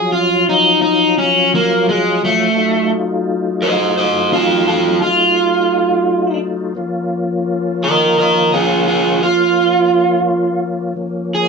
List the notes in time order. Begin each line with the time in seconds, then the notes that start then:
Already playing: F3 F#3 C#4 F4
0.12 F4
0.49 D#4
0.82 D#4
1.18 C#4
1.55 A#3
1.89 G#3
2.25 A3
2.56 F#3 A3 D#4 F4
3.62 C5 D#5
3.97 C5 D#5
4.33 F4 A4
4.68 F4 A4
5.02 F4
6.75 F3 A#3 C#4 F4
7.84 A#4 D#5
8.19 A#4 D#5
8.54 F4 G#4
8.88 F4 G#4
9.23 F4
10.96 F3 A#3 C#4
11.35 G#4